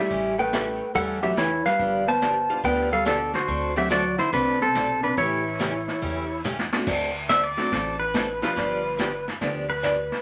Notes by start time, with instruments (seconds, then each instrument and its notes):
Already playing: hollow-body jazz guitar G3, honky-tonk piano G3 A3 C#4 E4, electric slide guitar G4 E5
0.10 upright bass A1, steel-string acoustic guitar C#3 E3 A3 C#4 G4, brush sweep, kick
0.39 hollow-body jazz guitar A3, electric slide guitar B4 G5
0.53 steel-string acoustic guitar C#3 E3 A3 C#4 G4, honky-tonk piano G3 A3 C#4 E4, snare, hi-hat pedal
0.95 upright bass E2, steel-string acoustic guitar C#3 E3 A3 C#4 G4, hollow-body jazz guitar G3, electric slide guitar A4 F#5, brush sweep, kick
1.23 hollow-body jazz guitar F#3, honky-tonk piano G3 A3 C#4 G4, electric slide guitar G4 E5
1.37 steel-string acoustic guitar C#3 E3 A3 C#4 G4, hollow-body jazz guitar E3, electric slide guitar E4 C#5, snare, hi-hat pedal
1.65 hollow-body jazz guitar G3, electric slide guitar B4 F5, snare
1.79 upright bass G1, steel-string acoustic guitar D3 F3 B3 D4 G4, brush sweep, kick
2.08 hollow-body jazz guitar B3, electric slide guitar C5 A5
2.22 steel-string acoustic guitar D3 F3 B3 D4 G4, snare, hi-hat pedal
2.49 honky-tonk piano G3 B3 D4 F4
2.63 upright bass D2, steel-string acoustic guitar D3 F3 B3 D4 G4, hollow-body jazz guitar B3, electric slide guitar B4 G5, brush sweep, kick
2.93 hollow-body jazz guitar G3, electric slide guitar A4 F5
3.05 hollow-body jazz guitar B2, steel-string acoustic guitar D3 F3 B3 D4 G4, electric slide guitar D4 A4, snare, hi-hat pedal
3.33 hollow-body jazz guitar D3, electric slide guitar F#4 C5, snare
3.48 upright bass D2, steel-string acoustic guitar D3 A3 C4 F#4 A4, brush sweep, kick
3.76 hollow-body jazz guitar F#3, honky-tonk piano A3 C4 D4 F#4, electric slide guitar G4 E5
3.90 steel-string acoustic guitar D3 A3 C4 F#4 A4, hollow-body jazz guitar F#3, electric slide guitar F#4 D5, snare, hi-hat pedal
4.18 hollow-body jazz guitar D3, electric slide guitar E4 C5, snare
4.32 upright bass C2, hollow-body jazz guitar C3, steel-string acoustic guitar D3 A3 C4 F#4 A4, electric slide guitar D4 B4, brush sweep, kick
4.62 hollow-body jazz guitar C3, electric slide guitar C4 A4
4.75 upright bass B1, steel-string acoustic guitar D3 A3 C4 F#4 A4, snare, hi-hat pedal
5.03 hollow-body jazz guitar C3, electric slide guitar D4 B4
5.17 upright bass A1, steel-string acoustic guitar C#3 E3 A3 C#4 G4, hollow-body jazz guitar E3, electric slide guitar E4 C#5, brush sweep, kick
5.59 steel-string acoustic guitar C#3 E3 A3 C#4 G4, snare, hi-hat pedal
5.88 snare
6.02 upright bass E2, steel-string acoustic guitar C#3 E3 A3 C#4 G4, brush sweep, kick
6.44 steel-string acoustic guitar C#3 E3 A3 C#4 G4, hi-hat pedal, mid tom
6.59 snare
6.72 honky-tonk piano A3 C4 D4 F#4, snare
6.87 upright bass D2, steel-string acoustic guitar D3 A3 C4 F#4 A4, brush sweep, kick, snare, crash
7.29 steel-string acoustic guitar D3 A3 C4 F#4 A4, pedal steel guitar E5, kick, snare, hi-hat pedal
7.43 pedal steel guitar D5
7.57 honky-tonk piano F#3 A3 C4 D4 F#4, snare
7.72 upright bass A1, steel-string acoustic guitar D3 A3 C4 F#4 A4, brush sweep, kick, snare
8.00 pedal steel guitar B4
8.14 steel-string acoustic guitar D3 A3 C4 F#4 A4, kick, snare, hi-hat pedal
8.42 honky-tonk piano F3 G3 B3 D4 F4, pedal steel guitar B4, snare
8.56 upright bass G1, steel-string acoustic guitar D3 F3 B3 D4 G4, brush sweep, kick, snare
8.98 steel-string acoustic guitar D3 F3 B3 D4 G4, kick, snare, hi-hat pedal
9.28 snare
9.41 upright bass D2, steel-string acoustic guitar D3 F3 B3 D4 G4, brush sweep, kick, snare
9.70 pedal steel guitar B4
9.82 steel-string acoustic guitar D3 F3 B3 D4 G4, kick, snare, hi-hat pedal
10.12 snare